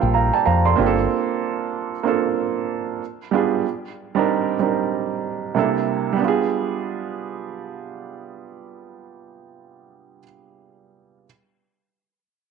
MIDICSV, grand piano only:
0, 0, Header, 1, 2, 480
1, 0, Start_track
1, 0, Key_signature, -2, "minor"
1, 0, Tempo, 638298
1, 817, Time_signature, 4, 2, 24, 8
1, 9401, End_track
2, 0, Start_track
2, 0, Title_t, "Grand piano"
2, 0, Program_c, 0, 0
2, 0, Control_c, 0, 64, 127
2, 0, Note_on_c, 0, 55, 65
2, 0, Note_on_c, 0, 58, 55
2, 0, Note_on_c, 0, 62, 58
2, 0, Note_on_c, 0, 65, 59
2, 0, Note_on_c, 0, 69, 82
2, 0, Note_on_c, 0, 72, 70
2, 0, Note_on_c, 0, 77, 66
2, 0, Note_on_c, 0, 79, 59
2, 12, Note_off_c, 0, 79, 0
2, 12, Note_on_c, 0, 79, 61
2, 94, Note_off_c, 0, 79, 0
2, 104, Note_on_c, 0, 82, 61
2, 107, Note_off_c, 0, 72, 0
2, 109, Note_off_c, 0, 77, 0
2, 109, Note_on_c, 0, 77, 52
2, 242, Note_off_c, 0, 82, 0
2, 244, Note_off_c, 0, 77, 0
2, 252, Note_on_c, 0, 79, 60
2, 252, Note_on_c, 0, 81, 65
2, 256, Note_on_c, 0, 74, 54
2, 334, Note_off_c, 0, 81, 0
2, 336, Note_off_c, 0, 79, 0
2, 338, Note_off_c, 0, 74, 0
2, 343, Note_on_c, 0, 77, 59
2, 343, Note_on_c, 0, 82, 61
2, 347, Note_on_c, 0, 72, 51
2, 474, Note_off_c, 0, 55, 0
2, 477, Note_off_c, 0, 58, 0
2, 478, Note_off_c, 0, 82, 0
2, 481, Note_off_c, 0, 62, 0
2, 481, Note_off_c, 0, 77, 0
2, 483, Note_off_c, 0, 72, 0
2, 485, Note_off_c, 0, 65, 0
2, 492, Note_on_c, 0, 74, 57
2, 492, Note_on_c, 0, 84, 73
2, 498, Note_off_c, 0, 69, 0
2, 498, Note_on_c, 0, 69, 50
2, 570, Note_on_c, 0, 58, 78
2, 578, Note_on_c, 0, 60, 71
2, 585, Note_on_c, 0, 62, 68
2, 588, Control_c, 0, 64, 0
2, 592, Note_on_c, 0, 65, 69
2, 601, Note_on_c, 0, 67, 70
2, 638, Note_off_c, 0, 69, 0
2, 649, Note_off_c, 0, 67, 0
2, 650, Note_on_c, 0, 69, 85
2, 709, Control_c, 0, 64, 127
2, 717, Note_off_c, 0, 74, 0
2, 797, Note_off_c, 0, 84, 0
2, 1435, Note_off_c, 0, 58, 0
2, 1439, Note_off_c, 0, 60, 0
2, 1442, Note_off_c, 0, 62, 0
2, 1446, Note_off_c, 0, 65, 0
2, 1475, Note_off_c, 0, 69, 0
2, 1530, Note_on_c, 0, 58, 66
2, 1537, Note_on_c, 0, 60, 60
2, 1543, Note_on_c, 0, 62, 64
2, 1551, Note_on_c, 0, 65, 64
2, 1560, Note_on_c, 0, 69, 75
2, 2253, Note_off_c, 0, 58, 0
2, 2257, Note_off_c, 0, 60, 0
2, 2260, Note_off_c, 0, 62, 0
2, 2264, Note_off_c, 0, 65, 0
2, 2267, Control_c, 0, 64, 0
2, 2268, Note_off_c, 0, 69, 0
2, 2403, Control_c, 0, 64, 127
2, 2490, Note_on_c, 0, 55, 69
2, 2498, Note_on_c, 0, 59, 60
2, 2506, Note_on_c, 0, 62, 64
2, 2513, Note_on_c, 0, 65, 65
2, 2520, Note_on_c, 0, 68, 72
2, 2734, Note_off_c, 0, 55, 0
2, 2738, Note_off_c, 0, 59, 0
2, 2742, Note_off_c, 0, 62, 0
2, 2745, Note_off_c, 0, 65, 0
2, 2747, Control_c, 0, 64, 0
2, 2749, Note_off_c, 0, 68, 0
2, 2881, Control_c, 0, 64, 127
2, 3119, Note_on_c, 0, 55, 73
2, 3125, Note_on_c, 0, 60, 68
2, 3134, Note_on_c, 0, 62, 66
2, 3141, Note_on_c, 0, 63, 67
2, 3148, Note_on_c, 0, 70, 73
2, 3418, Note_off_c, 0, 55, 0
2, 3421, Note_off_c, 0, 60, 0
2, 3425, Note_off_c, 0, 62, 0
2, 3429, Note_off_c, 0, 63, 0
2, 3433, Note_off_c, 0, 70, 0
2, 3452, Note_on_c, 0, 55, 61
2, 3460, Note_on_c, 0, 60, 53
2, 3465, Note_on_c, 0, 62, 53
2, 3473, Note_on_c, 0, 63, 56
2, 3480, Note_on_c, 0, 70, 62
2, 4165, Note_off_c, 0, 55, 0
2, 4170, Note_on_c, 0, 48, 70
2, 4175, Note_off_c, 0, 62, 0
2, 4177, Note_on_c, 0, 55, 63
2, 4179, Note_off_c, 0, 60, 0
2, 4182, Note_on_c, 0, 58, 67
2, 4185, Note_off_c, 0, 63, 0
2, 4186, Control_c, 0, 64, 0
2, 4186, Note_on_c, 0, 62, 64
2, 4189, Note_off_c, 0, 70, 0
2, 4194, Note_on_c, 0, 64, 68
2, 4200, Note_on_c, 0, 69, 79
2, 4316, Control_c, 0, 64, 127
2, 4596, Note_off_c, 0, 55, 0
2, 4606, Note_off_c, 0, 48, 0
2, 4607, Note_on_c, 0, 55, 73
2, 4612, Note_off_c, 0, 58, 0
2, 4614, Note_off_c, 0, 62, 0
2, 4617, Note_off_c, 0, 64, 0
2, 4621, Note_off_c, 0, 69, 0
2, 4635, Note_on_c, 0, 59, 62
2, 4664, Note_on_c, 0, 62, 61
2, 4667, Control_c, 0, 64, 0
2, 4693, Note_on_c, 0, 65, 62
2, 4723, Note_on_c, 0, 68, 78
2, 4809, Control_c, 0, 64, 127
2, 7650, Note_off_c, 0, 55, 0
2, 7664, Note_off_c, 0, 59, 0
2, 7679, Note_off_c, 0, 62, 0
2, 7693, Note_off_c, 0, 65, 0
2, 7708, Note_off_c, 0, 68, 0
2, 8467, Control_c, 0, 64, 0
2, 9401, End_track
0, 0, End_of_file